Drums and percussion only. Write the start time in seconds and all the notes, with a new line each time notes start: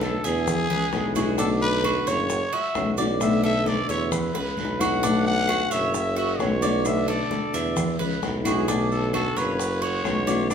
0.01 high bongo, high conga, short guiro, maracas
0.24 high bongo, short guiro, maracas
0.47 high bongo, high conga, low conga, long guiro, claves, maracas
0.70 high bongo, high conga, low conga, maracas
0.93 high bongo, low bongo, high conga, short guiro, maracas
1.15 high bongo, high conga, short guiro, claves, maracas
1.38 high bongo, high conga, long guiro, maracas
1.61 high bongo, high conga, maracas
1.84 high bongo, high conga, short guiro, claves, maracas
2.07 high bongo, high conga, short guiro, maracas
2.30 high bongo, high conga, long guiro, maracas
2.52 high bongo, high conga, maracas
2.75 high bongo, low bongo, high conga, short guiro, claves, maracas
2.98 short guiro, maracas
3.20 high bongo, high conga, long guiro, claves, maracas
3.44 maracas
3.66 high bongo, high conga, short guiro, maracas
3.89 high bongo, short guiro, maracas
4.12 high bongo, high conga, low conga, long guiro, claves, maracas
4.35 high bongo, high conga, maracas
4.57 high conga, short guiro, maracas
4.65 low bongo
4.80 low bongo, high conga, short guiro, claves, maracas
5.03 high bongo, long guiro, maracas
5.26 high bongo, maracas
5.48 high bongo, high conga, short guiro, claves, maracas
5.71 high bongo, high conga, short guiro, maracas
5.94 high bongo, high conga, long guiro, maracas
6.17 high bongo, high conga, maracas
6.39 high bongo, low bongo, high conga, short guiro, claves, maracas
6.62 short guiro, maracas
6.85 high bongo, long guiro, claves, maracas
7.08 maracas
7.31 high bongo, high conga, short guiro, maracas
7.54 high bongo, short guiro, maracas
7.77 high bongo, high conga, low conga, long guiro, claves, maracas
8.00 high bongo, high conga, low conga, maracas
8.22 high bongo, low bongo, high conga, short guiro, maracas
8.45 high bongo, high conga, short guiro, claves, maracas
8.68 high bongo, high conga, maracas
8.91 high bongo, maracas
9.13 high bongo, high conga, short guiro, claves, maracas
9.37 high bongo, high conga, short guiro, maracas
9.59 high bongo, high conga, long guiro, maracas
9.82 high bongo, high conga, maracas
10.04 high bongo, low bongo, high conga, short guiro, claves, maracas
10.28 short guiro, maracas
10.50 high bongo, high conga, long guiro, claves, maracas